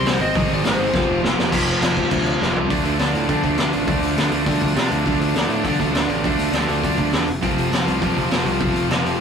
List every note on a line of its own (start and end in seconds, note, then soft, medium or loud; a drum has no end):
0.05 0.17 C2 loud
0.05 0.20 C3 medium
0.05 0.20 G3 medium
0.05 0.36 C4 medium
0.05 0.19 E4 loud
0.05 0.21 C5 medium
0.05 snare loud
0.05 open hi-hat medium
0.20 0.31 G#1 loud
0.20 0.51 D#5 loud
0.35 0.46 G#1 loud
0.35 0.64 G#2 loud
0.35 0.64 D#3 loud
0.35 0.63 G#3 loud
0.35 0.62 C4 loud
0.35 0.62 D#4 loud
0.35 kick loud
0.35 open hi-hat medium
0.50 0.61 G#1 medium
0.54 0.67 D5 medium
0.63 0.75 G#1 loud
0.63 0.93 G#2 medium
0.63 0.92 D#3 medium
0.63 0.93 G#3 medium
0.63 0.92 C4 medium
0.63 0.92 D#4 loud
0.63 snare loud
0.63 open hi-hat medium
0.67 1.20 C5 medium
0.79 0.90 G#1 medium
0.92 1.04 F1 loud
0.92 1.23 F2 medium
0.92 1.22 C3 medium
0.92 1.24 F3 loud
0.92 1.23 A3 medium
0.92 1.23 C4 loud
0.92 1.22 F4 loud
0.92 kick loud
0.92 snare medium
1.10 1.20 F1 medium
1.23 1.34 F1 loud
1.23 1.49 F2 medium
1.23 1.51 C3 medium
1.23 1.52 F3 medium
1.23 1.52 A3 medium
1.23 1.52 C4 medium
1.23 1.52 F4 loud
1.23 snare loud
1.39 1.49 F1 loud
1.39 snare medium
1.52 1.75 F1 loud
1.52 1.84 F2 medium
1.52 1.83 C3 medium
1.52 1.83 F3 medium
1.52 1.82 A3 medium
1.52 1.81 C4 loud
1.52 kick loud
1.52 crash loud
1.52 crash medium
1.67 crash medium
1.81 2.04 F1 loud
1.81 2.10 F2 medium
1.81 2.11 C3 medium
1.81 2.11 F3 medium
1.81 2.12 A3 medium
1.81 2.12 C4 medium
1.81 snare loud
1.81 crash medium
1.97 kick medium
1.97 crash medium
2.11 2.34 D2 loud
2.11 2.42 F2 loud
2.11 2.41 C3 loud
2.11 2.41 F3 loud
2.11 2.40 A3 loud
2.11 2.40 C4 loud
2.11 kick loud
2.11 crash medium
2.26 crash medium
2.41 2.52 F1 loud
2.41 2.71 F2 medium
2.41 2.69 C3 medium
2.41 2.70 F3 loud
2.41 2.69 A3 medium
2.41 2.69 C4 loud
2.41 snare medium
2.56 2.67 C2 medium
2.56 floor tom medium
2.69 2.84 D2 medium
2.69 3.01 D3 medium
2.69 3.01 A3 medium
2.69 3.00 D4 medium
2.69 2.99 F4 loud
2.69 2.99 A4 loud
2.69 kick loud
2.69 open hi-hat medium
2.85 2.98 D2 medium
2.85 open hi-hat medium
2.99 3.13 D2 medium
2.99 3.28 D3 medium
2.99 3.28 A3 medium
2.99 3.29 D4 medium
2.99 3.30 F4 medium
2.99 3.30 A4 medium
2.99 snare loud
2.99 open hi-hat medium
3.14 3.28 A2 medium
3.14 open hi-hat medium
3.28 3.60 D3 medium
3.28 3.42 D3 medium
3.28 3.60 A3 medium
3.28 3.59 D4 medium
3.28 3.59 F4 medium
3.28 3.58 A4 medium
3.28 kick loud
3.28 open hi-hat medium
3.43 3.57 D2 medium
3.43 kick medium
3.43 open hi-hat medium
3.58 3.72 D2 medium
3.58 3.87 D3 medium
3.58 3.88 A3 medium
3.58 3.88 D4 loud
3.58 3.88 F4 loud
3.58 3.89 A4 loud
3.58 snare loud
3.58 open hi-hat medium
3.73 3.87 A1 medium
3.73 open hi-hat medium
3.87 4.01 D2 loud
3.87 4.20 D3 medium
3.87 4.19 A3 medium
3.87 4.19 D4 medium
3.87 4.18 F4 medium
3.87 4.17 A4 medium
3.87 kick loud
3.87 open hi-hat medium
4.03 4.17 D2 medium
4.03 open hi-hat medium
4.17 4.31 D2 medium
4.17 4.47 D3 medium
4.17 4.48 A3 medium
4.17 4.48 D4 medium
4.17 4.49 F4 medium
4.17 4.49 A4 medium
4.17 snare medium
4.17 open hi-hat medium
4.32 4.46 D2 medium
4.32 open hi-hat medium
4.46 4.60 D2 medium
4.46 4.78 D3 medium
4.46 4.77 A3 medium
4.46 4.77 D4 medium
4.46 4.76 F4 loud
4.46 4.76 A4 medium
4.46 kick loud
4.46 open hi-hat medium
4.61 4.75 D2 medium
4.61 kick medium
4.61 open hi-hat medium
4.76 4.90 C3 medium
4.76 5.05 D3 medium
4.76 5.06 A3 medium
4.76 5.06 D4 medium
4.76 5.06 F4 loud
4.76 5.07 A4 loud
4.76 snare loud
4.76 open hi-hat medium
4.91 5.05 D2 medium
4.91 open hi-hat medium
5.05 5.19 D2 loud
5.05 5.36 D3 medium
5.05 5.36 A3 medium
5.05 5.36 D4 loud
5.05 5.36 F4 medium
5.05 5.35 A4 medium
5.05 kick loud
5.05 open hi-hat medium
5.20 5.34 D2 medium
5.20 open hi-hat medium
5.35 5.48 D2 medium
5.35 5.64 D3 medium
5.35 5.65 A3 medium
5.35 5.65 D4 medium
5.35 5.66 F4 medium
5.35 5.67 A4 medium
5.35 snare loud
5.35 open hi-hat medium
5.48 5.63 A2 medium
5.48 open hi-hat medium
5.64 5.78 D3 medium
5.64 5.95 D3 medium
5.64 5.95 A3 medium
5.64 5.93 D4 medium
5.64 5.94 F4 medium
5.64 5.93 A4 medium
5.64 kick loud
5.64 open hi-hat medium
5.80 5.92 D2 medium
5.80 kick medium
5.80 open hi-hat medium
5.92 6.07 D2 loud
5.92 6.22 D3 medium
5.92 6.23 A3 medium
5.92 6.23 D4 loud
5.92 6.24 F4 loud
5.92 6.25 A4 loud
5.92 snare loud
5.92 open hi-hat medium
6.08 6.22 A1 loud
6.08 open hi-hat medium
6.23 6.38 D2 loud
6.23 6.54 D3 medium
6.23 6.54 A3 medium
6.23 6.53 D4 medium
6.23 6.54 F4 loud
6.23 6.53 A4 loud
6.23 kick loud
6.23 open hi-hat medium
6.38 6.51 D2 medium
6.38 open hi-hat medium
6.52 6.66 D2 loud
6.52 6.82 D3 medium
6.52 6.83 A3 medium
6.52 6.83 D4 medium
6.52 6.84 F4 medium
6.52 6.84 A4 medium
6.52 snare loud
6.52 open hi-hat medium
6.68 6.82 D2 medium
6.68 open hi-hat medium
6.83 6.97 D2 medium
6.83 7.13 D3 medium
6.83 7.13 A3 medium
6.83 7.12 D4 medium
6.83 7.13 F4 loud
6.83 7.12 A4 medium
6.83 kick loud
6.83 open hi-hat medium
6.98 7.12 D2 medium
6.98 kick medium
6.98 open hi-hat medium
7.12 7.27 E2 medium
7.12 7.28 D3 medium
7.12 7.27 A3 loud
7.12 7.27 D4 medium
7.12 7.27 F4 loud
7.12 7.27 A4 loud
7.12 snare loud
7.12 open hi-hat medium
7.28 7.42 F1 medium
7.28 open hi-hat medium
7.41 7.56 F1 loud
7.41 7.71 F2 medium
7.41 7.71 C3 loud
7.41 7.73 F3 medium
7.41 7.73 A3 medium
7.41 7.73 C4 medium
7.41 7.71 F4 medium
7.41 7.72 A4 medium
7.41 kick loud
7.41 open hi-hat medium
7.57 7.71 F1 medium
7.57 open hi-hat medium
7.72 7.86 F1 loud
7.72 7.99 F2 medium
7.72 8.01 C3 medium
7.72 8.01 F3 medium
7.72 8.02 A3 medium
7.72 8.02 C4 medium
7.72 8.02 F4 medium
7.72 8.02 A4 medium
7.72 snare loud
7.72 open hi-hat medium
7.87 8.01 C2 medium
7.87 open hi-hat medium
8.01 8.31 F2 medium
8.01 8.15 F2 loud
8.01 8.30 C3 medium
8.01 8.33 F3 medium
8.01 8.32 A3 medium
8.01 8.31 C4 medium
8.01 8.31 F4 medium
8.01 8.30 A4 medium
8.01 kick loud
8.01 open hi-hat medium
8.17 8.30 F1 medium
8.17 kick medium
8.17 open hi-hat medium
8.31 8.45 F1 medium
8.31 8.58 F2 medium
8.31 8.59 C3 medium
8.31 8.58 F3 medium
8.31 8.59 A3 medium
8.31 8.59 C4 medium
8.31 8.59 F4 loud
8.31 8.60 A4 loud
8.31 snare loud
8.31 open hi-hat medium
8.45 8.59 C2 medium
8.45 open hi-hat medium
8.59 8.74 F1 medium
8.59 8.90 F2 loud
8.59 8.89 C3 loud
8.59 8.90 F3 medium
8.59 8.89 A3 medium
8.59 8.89 C4 medium
8.59 8.88 F4 medium
8.59 8.88 A4 medium
8.59 kick loud
8.59 open hi-hat medium
8.75 8.89 F1 medium
8.75 open hi-hat medium
8.89 9.04 F1 medium
8.89 9.18 F2 medium
8.89 9.19 C3 medium
8.89 9.19 F3 medium
8.89 9.19 A3 medium
8.89 9.19 C4 medium
8.89 9.19 F4 medium
8.89 9.19 A4 medium
8.89 snare loud
8.89 open hi-hat medium
9.05 9.19 F1 medium
9.05 open hi-hat medium